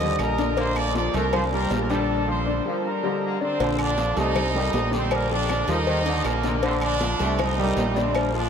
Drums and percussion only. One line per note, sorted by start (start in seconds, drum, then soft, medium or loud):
0.01 high conga soft
0.01 low agogo medium
0.19 cowbell medium
0.19 high conga soft
0.19 low timbale medium
0.19 low agogo loud
0.19 short guiro medium
0.19 claves medium
0.38 high conga medium
0.38 low agogo medium
0.38 short guiro medium
0.57 cowbell loud
0.57 high conga soft
0.57 low agogo medium
0.57 long guiro medium
0.76 cowbell medium
0.76 high conga soft
0.76 low agogo loud
0.76 claves medium
0.95 cowbell medium
0.95 high conga loud
0.95 low timbale medium
0.95 short guiro medium
1.14 cowbell medium
1.14 high conga soft
1.14 low agogo medium
1.14 short guiro medium
1.33 cowbell loud
1.33 high conga soft
1.33 low conga medium
1.33 low agogo loud
1.33 long guiro medium
1.33 claves medium
1.52 high conga soft
1.71 cowbell medium
1.71 high conga medium
1.71 low timbale medium
1.71 low agogo medium
1.71 short guiro medium
1.90 cowbell medium
1.90 short guiro medium
3.60 cowbell loud
3.60 high conga soft
3.60 low agogo medium
3.60 long guiro medium
3.79 cowbell medium
3.79 high conga soft
3.79 low agogo loud
3.79 claves medium
3.98 cowbell medium
3.98 high conga loud
3.98 low timbale medium
3.98 short guiro medium
4.17 cowbell medium
4.17 high conga soft
4.17 low agogo medium
4.17 short guiro medium
4.36 cowbell loud
4.36 high conga soft
4.36 low conga loud
4.36 low agogo loud
4.36 long guiro medium
4.36 claves medium
4.55 high conga soft
4.55 low conga medium
4.73 cowbell medium
4.73 high conga medium
4.73 low timbale medium
4.73 low agogo medium
4.73 short guiro medium
4.93 cowbell medium
4.93 high conga medium
4.93 short guiro medium
5.11 cowbell loud
5.11 high conga soft
5.11 low agogo loud
5.11 long guiro medium
5.11 claves medium
5.31 high conga soft
5.49 cowbell medium
5.49 high conga medium
5.49 low timbale medium
5.49 low agogo loud
5.49 short guiro medium
5.49 claves medium
5.68 cowbell medium
5.68 high conga soft
5.68 low agogo medium
5.68 short guiro medium
5.87 cowbell loud
5.87 high conga soft
5.87 long guiro medium
6.06 high conga soft
6.06 low agogo medium
6.24 cowbell medium
6.24 high conga soft
6.24 low timbale medium
6.24 low agogo loud
6.24 short guiro medium
6.24 claves medium
6.43 high conga medium
6.43 low agogo medium
6.43 short guiro medium
6.63 cowbell loud
6.63 low agogo medium
6.63 long guiro medium
6.81 cowbell medium
6.81 high conga soft
6.81 low agogo loud
6.81 claves medium
7.01 cowbell medium
7.01 high conga loud
7.01 low timbale medium
7.01 short guiro medium
7.19 cowbell medium
7.19 high conga soft
7.19 low agogo medium
7.19 short guiro medium
7.39 cowbell loud
7.39 high conga soft
7.39 low conga medium
7.39 low agogo loud
7.39 long guiro medium
7.39 claves medium
7.58 high conga soft
7.58 low conga medium
7.77 cowbell medium
7.77 high conga loud
7.77 low timbale medium
7.77 low agogo medium
7.77 short guiro medium
7.96 cowbell medium
7.96 high conga medium
7.96 short guiro medium
8.15 cowbell loud
8.15 high conga soft
8.15 low agogo loud
8.15 long guiro medium
8.15 claves medium
8.34 high conga soft